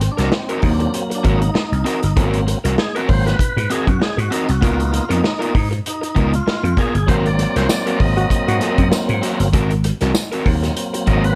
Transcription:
Already playing: tonewheel organ C4
0.01 muted overdriven electric guitar stroke, closed hi-hat
0.12 tonewheel organ D4
0.17 slap bass C2, overdriven electric guitar C4 F#4 A#4, snare, closed hi-hat
0.32 tonewheel organ C4, muted overdriven electric guitar stroke, snare
0.49 overdriven electric guitar C4 F#4 A#4, tonewheel organ D#4, closed hi-hat
0.62 slap bass D#2, tonewheel organ F#3 A#3 C4, muted overdriven electric guitar stroke, kick, open hi-hat
0.74 tonewheel organ D4
0.80 muted overdriven electric guitar stroke, closed hi-hat
0.94 tonewheel organ C4, closed hi-hat
1.10 muted overdriven electric guitar stroke, closed hi-hat
1.15 tonewheel organ D4
1.23 slap bass G#1, overdriven electric guitar C4 F#4 A#4, kick, closed hi-hat
1.35 tonewheel organ D#4
1.42 muted overdriven electric guitar stroke, closed hi-hat
1.54 muted overdriven electric guitar stroke, snare
1.72 slap bass C2, closed hi-hat
1.85 overdriven electric guitar C4 F#4 A#4, closed hi-hat
2.03 slap bass G1, muted overdriven electric guitar stroke, closed hi-hat
2.16 slap bass G#1, tonewheel organ F#3 A#3 C4, overdriven electric guitar C4 F#4 A#4, kick, closed hi-hat
2.34 closed hi-hat
2.47 muted overdriven electric guitar stroke, closed hi-hat
2.64 slap bass C2, overdriven electric guitar C4 F#4 A#4, closed hi-hat
2.78 tonewheel organ G#4, muted overdriven electric guitar stroke, snare
2.95 overdriven electric guitar C4 F#4 A#4, tonewheel organ B4, closed hi-hat
3.08 slap bass G#1, tonewheel organ F#3 A#3 C4 C5, muted overdriven electric guitar stroke, kick, open hi-hat
3.26 tonewheel organ B4, muted overdriven electric guitar stroke, snare, closed hi-hat
3.39 muted slap bass stroke, kick, closed hi-hat
3.57 slap bass G#2, muted overdriven electric guitar stroke, closed hi-hat
3.70 overdriven electric guitar C4 F#4 A#4, tonewheel organ G#4, closed hi-hat
3.87 slap bass F#2, tonewheel organ F#4, muted overdriven electric guitar stroke, kick, closed hi-hat
4.00 tonewheel organ G#4, muted overdriven electric guitar stroke, snare
4.17 slap bass G#2, tonewheel organ F#4, muted overdriven electric guitar stroke, closed hi-hat
4.31 overdriven electric guitar C4 F#4 A#4, tonewheel organ D#4, closed hi-hat
4.48 slap bass C2, tonewheel organ F#4, muted overdriven electric guitar stroke, closed hi-hat
4.61 slap bass C#2, tonewheel organ A#3 B3 D#4 F4, overdriven electric guitar B3 F4 A#4, kick, closed hi-hat
4.80 closed hi-hat
4.92 tonewheel organ F4, muted overdriven electric guitar stroke, closed hi-hat
5.09 slap bass F2, overdriven electric guitar B3 F4 A#4, tonewheel organ D#4, closed hi-hat
5.22 muted overdriven electric guitar stroke, snare
5.39 overdriven electric guitar B3 F4 A#4, closed hi-hat
5.53 slap bass G#2, muted overdriven electric guitar stroke, kick, open hi-hat
5.71 muted overdriven electric guitar stroke, closed hi-hat
5.86 tonewheel organ D#4, closed hi-hat
6.01 muted overdriven electric guitar stroke, closed hi-hat
6.15 slap bass C#2, overdriven electric guitar B3 F4 A#4, kick, closed hi-hat
6.33 tonewheel organ F4, muted overdriven electric guitar stroke, closed hi-hat
6.47 muted overdriven electric guitar stroke, muted slap bass stroke, snare
6.63 slap bass F2, muted overdriven electric guitar stroke, closed hi-hat
6.77 overdriven electric guitar B3 F4 A#4, tonewheel organ G#4, kick, closed hi-hat
6.95 slap bass G1, muted overdriven electric guitar stroke, closed hi-hat
7.07 slap bass G#1, tonewheel organ F#3 A#3 C4 C5, overdriven electric guitar C4 F#4 A#4, kick, closed hi-hat
7.26 tonewheel organ D5, closed hi-hat
7.39 muted overdriven electric guitar stroke, closed hi-hat
7.56 slap bass C2, overdriven electric guitar C4 F#4 A#4, tonewheel organ C5, snare, closed hi-hat
7.69 tonewheel organ D5, muted overdriven electric guitar stroke, snare, tambourine
7.86 overdriven electric guitar C4 F#4 A#4, closed hi-hat
8.00 slap bass G#1, tonewheel organ D#5, muted overdriven electric guitar stroke, kick, open hi-hat
8.17 trombone F#4, muted overdriven electric guitar stroke, closed hi-hat
8.30 kick, closed hi-hat
8.47 slap bass G#2, trombone F#4, muted overdriven electric guitar stroke, closed hi-hat
8.60 overdriven electric guitar C4 F#4 A#4, closed hi-hat
8.77 slap bass F#2, muted overdriven electric guitar stroke, kick, closed hi-hat
8.90 muted overdriven electric guitar stroke, snare, tambourine
9.08 slap bass G#2, muted overdriven electric guitar stroke, closed hi-hat
9.22 overdriven electric guitar C4 F#4 A#4, closed hi-hat
9.40 slap bass G1, muted overdriven electric guitar stroke, closed hi-hat
9.53 slap bass G#1, overdriven electric guitar C4 F#4 A#4, kick, closed hi-hat
9.70 closed hi-hat
9.84 muted overdriven electric guitar stroke, closed hi-hat
10.01 slap bass C2, overdriven electric guitar C4 F#4 A#4, snare, closed hi-hat
10.15 muted overdriven electric guitar stroke, snare, tambourine
10.32 overdriven electric guitar C4 F#4 A#4, closed hi-hat
10.45 slap bass D#2, tonewheel organ F#3 A#3 C4, muted overdriven electric guitar stroke, kick, open hi-hat
10.63 muted overdriven electric guitar stroke, snare, closed hi-hat
10.77 closed hi-hat
10.94 muted overdriven electric guitar stroke, closed hi-hat
11.06 slap bass G#1, overdriven electric guitar C4 F#4 A#4, tonewheel organ D#5, kick, closed hi-hat
11.24 tonewheel organ B4, muted overdriven electric guitar stroke, closed hi-hat

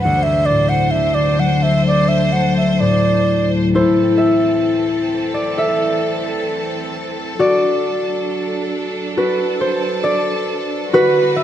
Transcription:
0.00 string section F#3 D4 C5, flute F#5
0.05 harp D2
0.23 flute E5
0.46 flute D5
0.50 harp A2
0.69 flute F#5
0.91 harp D3, flute E5
1.14 flute D5
1.39 harp F#3, flute F#5
1.63 flute E5
1.85 harp A3, flute D5
2.08 flute E5
2.32 harp F#3, flute F#5
2.57 flute E5
2.73 flute E5
2.80 harp A2, flute D5
3.74 string section E3 C4 A4, harp E4 C5
4.18 harp E5
5.34 harp D5
5.57 harp A4 E5
7.38 string section F#3 D4, harp F#4 D5
9.14 harp F#4 B4, string section A4
9.61 harp C5
10.04 harp D5
10.91 string section D3 G3 F#4 B4, harp F#4 B4
11.36 harp E5

